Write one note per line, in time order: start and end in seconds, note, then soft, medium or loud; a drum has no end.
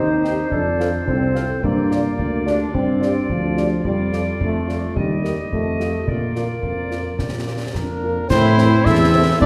0.00 0.42 D#2 medium
0.00 0.51 D#4 medium
0.00 0.48 G4 medium
0.00 1.59 C5 medium
0.24 0.34 D#4 soft
0.24 0.34 G4 soft
0.24 0.34 C5 soft
0.24 0.34 G5 soft
0.24 snare soft
0.50 0.98 F2 medium
0.50 1.03 D4 medium
0.50 1.59 A4 soft
0.50 concert bass drum medium
0.80 0.90 F4 soft
0.80 0.90 A4 soft
0.80 0.90 C5 soft
0.80 0.90 F5 soft
0.80 snare soft
1.06 1.54 C2 medium
1.06 1.59 C4 medium
1.06 concert bass drum medium
1.34 1.45 F4 soft
1.34 1.45 A4 soft
1.34 1.45 C5 soft
1.34 1.45 F5 soft
1.34 snare soft
1.62 2.09 G2 medium
1.62 2.42 A#3 medium
1.62 3.84 F4 medium
1.62 3.84 D5 medium
1.62 concert bass drum medium
1.90 2.00 F4 soft
1.90 2.01 G4 soft
1.90 2.01 D5 soft
1.90 snare soft
2.19 2.65 D2 medium
2.19 concert bass drum medium
2.46 2.72 D4 medium
2.46 2.56 F4 soft
2.46 2.56 G4 soft
2.46 2.56 D5 soft
2.46 snare soft
2.74 3.20 G2 medium
2.74 3.26 C4 medium
2.74 concert bass drum medium
3.01 3.11 F4 soft
3.01 3.11 G4 soft
3.01 3.11 D5 soft
3.01 3.12 D5 soft
3.01 snare soft
3.30 3.76 D2 medium
3.30 3.81 F3 medium
3.30 concert bass drum medium
3.57 3.67 F4 soft
3.57 3.67 G4 soft
3.57 3.67 D5 soft
3.57 snare soft
3.85 4.31 F2 medium
3.85 4.37 G3 medium
3.85 4.92 F4 soft
3.85 4.92 D5 soft
3.85 concert bass drum medium
4.12 4.22 F4 soft
4.12 4.22 A4 soft
4.12 4.23 D5 soft
4.12 snare soft
4.40 4.87 F2 soft
4.40 4.93 A3 medium
4.40 concert bass drum medium
4.67 4.78 F4 soft
4.67 4.78 A4 soft
4.67 4.78 D5 soft
4.67 snare soft
4.96 5.38 D#2 medium
4.96 5.35 G3 medium
4.96 6.07 G4 soft
4.96 6.07 D#5 soft
4.96 concert bass drum medium
5.23 5.34 G4 soft
5.23 5.34 A#4 soft
5.23 5.34 D#5 soft
5.23 snare soft
5.52 5.98 F2 soft
5.52 6.04 A3 medium
5.52 concert bass drum soft
5.79 5.90 F4 soft
5.79 5.89 G4 soft
5.79 5.90 D#5 soft
5.79 snare soft
6.06 6.53 A#2 soft
6.06 7.74 A#3 soft
6.06 7.98 F4 soft
6.06 8.02 D5 soft
6.06 concert bass drum medium
6.35 6.45 F4 soft
6.35 6.45 A#4 soft
6.35 6.46 D5 soft
6.35 snare soft
6.63 7.09 F2 soft
6.63 7.20 F3 soft
6.63 concert bass drum soft
6.91 7.01 F4 soft
6.91 7.01 A#4 soft
6.91 7.01 D5 soft
6.91 snare soft
7.19 7.65 A#2 soft
7.19 7.73 G3 soft
7.19 concert bass drum medium
7.19 snare soft
7.46 7.56 F4 soft
7.46 7.56 A#4 soft
7.46 7.56 D5 soft
7.73 8.21 F2 soft
7.73 8.25 A#3 medium
7.73 8.25 D4 medium
7.73 8.26 A#4 medium
7.73 concert bass drum soft
7.73 snare soft
8.03 8.13 F4 soft
8.03 8.13 A#4 soft
8.28 8.76 A2 medium
8.28 9.46 E3 medium
8.28 8.86 C4 medium
8.28 9.46 C4 medium
8.28 9.36 E4 medium
8.28 8.81 E4 medium
8.28 8.87 C5 loud
8.28 concert bass drum medium
8.28 snare medium
8.28 crash medium
8.57 8.67 E3 medium
8.57 8.67 A3 medium
8.57 8.67 C4 medium
8.57 snare medium
8.84 9.32 E2 medium
8.84 9.40 E4 medium
8.84 9.36 A4 medium
8.84 9.41 E5 loud
8.84 concert bass drum medium
8.84 snare medium
9.13 9.23 E3 medium
9.13 9.23 A3 medium
9.13 9.23 C4 medium
9.40 9.46 A2 medium
9.40 9.46 D4 medium
9.40 9.46 F4 medium
9.40 9.46 D5 loud
9.40 concert bass drum medium